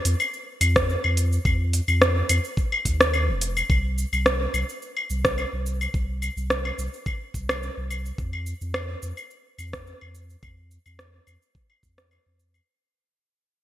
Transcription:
0.05 F2, open hi-hat, cabasa
0.20 cabasa, claves
0.33 cabasa
0.61 F2, open hi-hat, cabasa, claves
0.76 kick, cross-stick, cabasa
0.89 cabasa
1.04 F2, claves
1.17 open hi-hat, cabasa
1.32 cabasa
1.45 F2, kick, cabasa, claves
1.73 open hi-hat, cabasa
1.88 F2, cabasa, claves
2.02 cross-stick, cabasa
2.29 F2, open hi-hat, cabasa, claves
2.45 cabasa
2.57 kick, cabasa
2.72 claves
2.85 D#2, kick, open hi-hat, cabasa
3.01 cross-stick, cabasa
3.14 cabasa, claves
3.28 F1
3.41 open hi-hat, cabasa
3.57 cabasa, claves
3.70 C2, kick, cabasa, claves
3.98 cabasa
4.13 C2, cabasa, claves
4.26 cross-stick, cabasa
4.54 C2, cabasa, claves
4.69 cabasa
4.82 cabasa
4.97 claves
5.10 C2, cabasa
5.25 kick, cross-stick, cabasa
5.38 cabasa, claves
5.53 C2
5.66 cabasa
5.81 cabasa, claves
5.94 C2, kick, cabasa
6.22 cabasa, claves
6.37 C2, cabasa
6.50 cross-stick, cabasa
6.65 claves
6.78 C2, cabasa
6.94 cabasa
7.06 kick, cabasa, claves
7.34 C2, kick, cabasa
7.49 cross-stick, cabasa, claves
7.63 cabasa
7.77 C2
7.90 cabasa, claves
8.06 cabasa
8.18 F2, kick, cabasa
8.33 claves
8.46 cabasa
8.61 F2, cabasa
8.74 cross-stick, cabasa, claves
9.03 F2, cabasa
9.17 cabasa, claves
9.30 cabasa
9.58 F2, cabasa, claves
9.73 kick, cross-stick, cabasa
9.87 cabasa
10.01 F2, claves
10.15 cabasa
10.30 cabasa
10.43 F2, kick, cabasa, claves
10.71 cabasa
10.86 F2, cabasa, claves
10.99 cross-stick, cabasa
11.27 F2, cabasa, claves
11.42 cabasa
11.55 kick, cabasa
11.70 claves
11.83 F2, kick, cabasa
11.98 cross-stick, cabasa
12.11 cabasa, claves
12.26 F2
12.39 cabasa
12.54 cabasa, claves

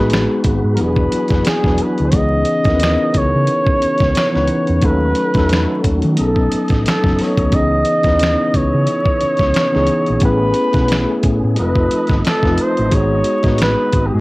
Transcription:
Already playing: A1 G#3 B3 D#4 F#4 B4
0.00 G#4
0.10 snare, closed hi-hat
0.14 finger snap
0.44 G#1, kick, closed hi-hat
0.64 G#2
0.74 F#3 B3 G#4 A#4, closed hi-hat
0.78 E1 E3 D4 E4 G4 B4
0.87 G#4
0.97 kick
1.12 muted fingered electric bass stroke, closed hi-hat
1.28 F#1, kick, closed hi-hat
1.32 snare
1.45 G#4, finger snap, muted fingered electric bass stroke, snare, closed hi-hat
1.62 E1 F#3 B3 D4 E4, kick
1.66 B4, snare
1.78 closed hi-hat
1.82 B4
1.98 D2, closed hi-hat
2.11 C#2 C#3 E3 B3 C#4 D#4, kick, closed hi-hat
2.16 G#4 D#5
2.45 closed hi-hat
2.63 D#2 B3 C#4 D#4 E4, kick, closed hi-hat
2.67 A#4, snare
2.74 B4
2.79 snare, closed hi-hat
2.84 finger snap
3.14 C#2 C#5, kick, closed hi-hat
3.35 C#3
3.47 closed hi-hat
3.67 kick
3.82 muted fingered electric bass stroke, closed hi-hat
3.98 kick, closed hi-hat
4.02 C#2, snare
4.15 finger snap, muted fingered electric bass stroke, snare, closed hi-hat
4.32 E3 B3 C#4 D#4, snare
4.36 C#2 B4
4.48 closed hi-hat
4.67 E2, closed hi-hat
4.81 D#2 D#3 F#3 A3 C#4 D#4 F#4, kick, closed hi-hat
4.85 A4 B4
5.15 closed hi-hat
5.33 E2 F#3 A3 C#4 D#4, kick, closed hi-hat
5.37 A4, snare
5.49 snare, closed hi-hat
5.53 finger snap
5.84 D#2, kick, closed hi-hat
6.02 D#3, closed hi-hat
6.16 B1 F#3 B3 C#4 D#4 D#5, closed hi-hat
6.21 G#4 A4
6.27 A4
6.36 kick
6.52 muted fingered electric bass stroke, closed hi-hat
6.68 A1, kick, closed hi-hat
6.73 snare
6.86 A4, finger snap, muted fingered electric bass stroke, snare, closed hi-hat
7.02 F#1 F#3 B3 C#4 D#4 A4, kick
7.07 snare
7.18 C#5, snare, open hi-hat
7.37 D2, kick, closed hi-hat
7.50 C#2 C#3 E3 B3 C#4 D#4, kick, closed hi-hat
7.55 G#4 D#5
7.85 closed hi-hat
8.03 D#2 B3 C#4 D#4 E4, kick, snare, closed hi-hat
8.07 B4
8.19 snare, closed hi-hat
8.24 finger snap
8.54 C#2 C#5, kick, closed hi-hat
8.74 C#3
8.87 closed hi-hat
9.06 kick
9.21 muted fingered electric bass stroke, closed hi-hat
9.37 C#2, kick, closed hi-hat
9.41 snare
9.54 finger snap, muted fingered electric bass stroke, snare, closed hi-hat
9.72 C#2 E3 B3 C#4 D#4, snare
9.76 G#4
9.87 closed hi-hat
10.06 A#1, closed hi-hat
10.20 A1 A3 B3 C#4 E4 G#4, kick, closed hi-hat
10.24 G#4 B4
10.54 closed hi-hat
10.73 B1 A3 B3 C#4 E4, kick, closed hi-hat
10.77 B4, snare
10.88 snare, closed hi-hat
10.92 finger snap
11.23 A1, kick, closed hi-hat
11.44 A2
11.55 F1 F3 G#3 C4 D#4 F4 A4 D#5, closed hi-hat
11.59 A3 B4
11.75 kick
11.91 muted fingered electric bass stroke, closed hi-hat
12.07 G1, kick, closed hi-hat
12.11 snare
12.25 A4, finger snap, muted fingered electric bass stroke, snare, closed hi-hat
12.41 F1 A3 C4 D#4 F4, kick
12.45 B4, snare
12.58 C5, closed hi-hat
12.77 A1, closed hi-hat
12.90 G#1 G#3 B3 D#4 F#4, kick, closed hi-hat
12.94 G#4 C#5
13.24 closed hi-hat
13.42 A1 G#3 B3 D#4 F#4, kick, snare, closed hi-hat
13.47 B4
13.58 snare, closed hi-hat
13.62 B4, finger snap
13.92 G#1, kick, closed hi-hat
14.07 G4
14.14 G#2 G#4

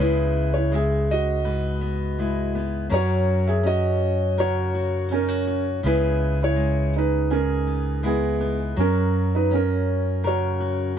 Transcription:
Already playing: C#2
0.00 C#3 G#3 B3 E4 B4
0.54 E4 C#5
0.72 G#3 G#4 E5
1.11 F#4 D#5
1.44 G#2 B4
1.81 B3
2.19 G#3 E4
2.55 B3
2.90 F#2 F#3 C#4 F#4 A#4
2.94 F#4 C#5
3.47 G#4 E5
3.63 C#4 F#4 D#5
4.38 C#3 F#4 A#4 C#5
4.74 F#4
5.11 C#4 D#4 A#4
5.29 F#4
5.47 F#4
5.83 C#2 C#3 G#3 B3 E4 G#4 B4
6.43 E4 C#5
6.56 G#3
6.97 D#4 B4
7.30 G#2 C#4 G#4 A#4
7.67 B3
8.03 G#3 B3 E4 G#4
8.40 B3
8.76 F#2 F#3 C#4 F#4
8.80 A#4
9.35 D#4 B4
9.51 C#4
9.55 A#4
10.23 C#3 A#4 C#5
10.28 F#4
10.60 F#4

